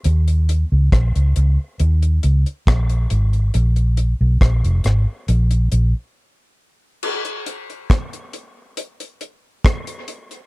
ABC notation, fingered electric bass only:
X:1
M:4/4
L:1/16
Q:1/4=69
K:Bbphr
V:1 name="Fingered electric bass" clef=bass
E,,3 D,, B,,, D,, D,, z E,,2 D,, z B,,,2 A,,,2 | B,,,3 C,, B,,, F,,, A,,, z B,,,2 B,,, z4 z | z16 |]